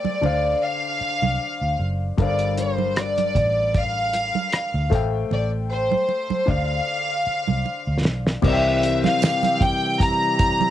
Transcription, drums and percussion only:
0.05 high conga
0.23 muted conga, low conga
1.22 high conga
2.18 kick, closed hi-hat, low conga
2.39 closed hi-hat
2.58 closed hi-hat, muted conga
2.78 high conga
2.96 cross-stick, closed hi-hat, muted conga
3.18 closed hi-hat, high conga
3.35 kick, closed hi-hat, low conga
3.75 kick, closed hi-hat
4.13 closed hi-hat, muted conga
4.35 high conga
4.53 cross-stick, closed hi-hat
4.92 kick, closed hi-hat
5.31 low conga
5.91 high conga
6.09 muted conga
6.30 high conga
6.48 kick, muted conga, low conga
7.48 high conga
7.66 muted conga
8.05 snare
8.27 snare
8.42 kick, crash, low conga
8.83 closed hi-hat
9.04 snare, high conga
9.22 snare, closed hi-hat, tambourine, muted conga
9.43 closed hi-hat, high conga
9.61 kick, closed hi-hat, muted conga, low conga
10.00 kick, closed hi-hat
10.39 kick, closed hi-hat, muted conga
10.61 high conga

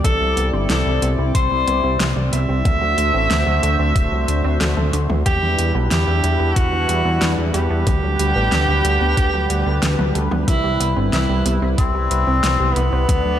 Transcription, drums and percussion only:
0.04 kick, closed hi-hat, mid tom
0.37 closed hi-hat
0.70 snare, closed hi-hat
1.02 closed hi-hat
1.35 kick, closed hi-hat
1.68 closed hi-hat
2.00 snare, closed hi-hat
2.33 closed hi-hat
2.65 kick, closed hi-hat, mid tom
2.98 closed hi-hat
3.31 snare, closed hi-hat
3.63 closed hi-hat
3.96 kick, closed hi-hat
4.28 closed hi-hat
4.61 snare, closed hi-hat
4.77 mid tom
4.93 closed hi-hat
5.10 mid tom
5.26 kick, closed hi-hat, mid tom
5.59 closed hi-hat
5.91 snare, closed hi-hat
6.24 closed hi-hat
6.56 kick, closed hi-hat
6.89 closed hi-hat
7.22 snare, closed hi-hat
7.54 closed hi-hat
7.87 kick, closed hi-hat, mid tom
8.19 closed hi-hat
8.52 snare, closed hi-hat
8.85 closed hi-hat
9.17 kick, closed hi-hat
9.50 closed hi-hat
9.83 snare, closed hi-hat
9.99 mid tom
10.15 closed hi-hat
10.32 mid tom
10.48 kick, closed hi-hat, mid tom
10.81 closed hi-hat
11.13 snare, closed hi-hat
11.46 closed hi-hat
11.78 kick, closed hi-hat
12.11 closed hi-hat
12.44 snare, closed hi-hat
12.76 closed hi-hat
13.09 kick, closed hi-hat, mid tom

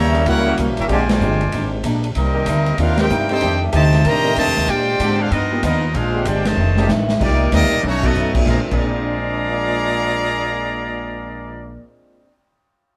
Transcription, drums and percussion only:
0.15 ride
0.26 kick, ride
0.57 kick, hi-hat pedal, ride
0.77 ride
0.89 kick, ride
1.09 snare, ride
1.21 hi-hat pedal
1.41 ride
1.52 kick, ride
1.84 kick, hi-hat pedal, ride
2.04 ride
2.15 kick, ride
2.46 kick, hi-hat pedal, ride
2.66 ride
2.78 kick, ride
2.97 snare, ride
3.09 hi-hat pedal
3.29 ride
3.41 kick, ride
3.73 kick, hi-hat pedal, ride
3.93 snare, ride
4.05 kick, ride
4.36 kick, hi-hat pedal, ride
4.57 snare, ride
4.68 kick, ride
5.00 kick, hi-hat pedal, ride
5.31 kick, ride
5.63 kick, hi-hat pedal, ride
5.94 kick, ride
6.25 kick, hi-hat pedal, ride
6.45 snare, ride
6.77 snare
6.88 snare, hi-hat pedal
7.09 snare
7.21 kick, crash
7.52 kick, snare, hi-hat pedal, ride
7.71 ride
7.83 high tom
8.03 kick, crash
8.14 hi-hat pedal
8.35 kick, crash
8.46 kick, snare
8.71 kick, crash

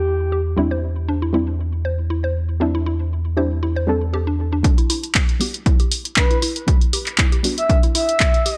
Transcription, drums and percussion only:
4.64 kick, closed hi-hat
4.78 closed hi-hat
4.90 open hi-hat
5.04 closed hi-hat
5.15 kick, clap, closed hi-hat
5.29 closed hi-hat
5.41 open hi-hat
5.54 closed hi-hat
5.66 kick, closed hi-hat
5.80 closed hi-hat
5.92 open hi-hat
6.05 closed hi-hat
6.16 kick, clap, closed hi-hat
6.31 closed hi-hat
6.42 open hi-hat
6.56 closed hi-hat
6.68 kick, closed hi-hat
6.81 closed hi-hat
6.93 open hi-hat
7.06 clap, closed hi-hat
7.18 kick, clap, closed hi-hat
7.32 closed hi-hat
7.44 open hi-hat
7.58 closed hi-hat
7.69 kick, closed hi-hat
7.83 closed hi-hat
7.95 open hi-hat
8.09 closed hi-hat
8.20 kick, clap, closed hi-hat
8.34 closed hi-hat
8.46 open hi-hat

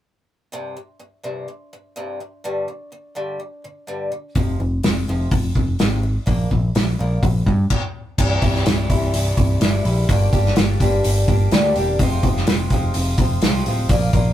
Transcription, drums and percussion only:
4.35 kick, open hi-hat
4.83 snare, open hi-hat
5.31 kick, open hi-hat
5.55 kick
5.79 snare, open hi-hat
6.27 kick, open hi-hat
6.51 kick
6.75 snare, open hi-hat
7.23 kick, open hi-hat
7.47 kick
7.70 kick, crash
8.18 kick, crash
8.42 kick, open hi-hat
8.55 snare
8.66 snare, open hi-hat
8.90 kick, open hi-hat
9.14 open hi-hat
9.37 kick, open hi-hat
9.61 snare, open hi-hat
9.85 open hi-hat
10.09 kick, open hi-hat
10.33 kick, open hi-hat
10.46 snare
10.56 snare, open hi-hat
10.80 kick, open hi-hat
11.04 open hi-hat
11.28 kick, open hi-hat
11.51 snare, open hi-hat
11.76 open hi-hat
11.99 kick, open hi-hat
12.23 kick, open hi-hat
12.36 snare
12.47 snare, open hi-hat
12.70 kick, open hi-hat
12.94 open hi-hat
13.18 kick, open hi-hat
13.42 snare, open hi-hat
13.66 open hi-hat
13.89 kick, open hi-hat
14.13 kick, open hi-hat

